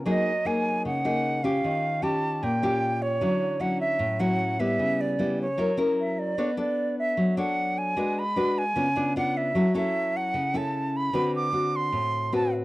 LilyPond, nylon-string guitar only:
\new Staff \with { instrumentName = "Nylon-string guitar" } { \time 4/4 \key fis \phrygian \tempo 4 = 152 << { <ais dis' gis'>8 r8 <ais dis' gis'>4. <ais dis' gis'>4 <cis' f' g'>8~ | <cis' f' g'>4 <des' f' g'>4. <des' f' g'>4. | <fis cis' e'>4 <fis cis' e'>4. <fis cis' e'>4 <g b e'>8~ | <g b e'>4 <g b e'>8 r8 <cis' e' ais'>8 <cis' e' ais'>4. |
\key b \minor <d' a' cis''>8 <d' a'>2 <d' a' cis''>4. | <d' fis' b'>8 r8 <d' fis' b'>8 r8 <b d' eis'>8 <b d' eis'>8 <b d' eis'>4 | <cis' e' a'>8 <cis' e' a'>2 <cis' e' a'>4. | <c' fis' b'>4 <c' fis'>2 <c' fis' b'>4 | } \\ { fis2 cis2 | ees2 bes,2 | d2 a,2 | cis2 fis2 |
b2 fis2 | gis2 cis2 | fis2 cis2 | d2 a,2 | } >> }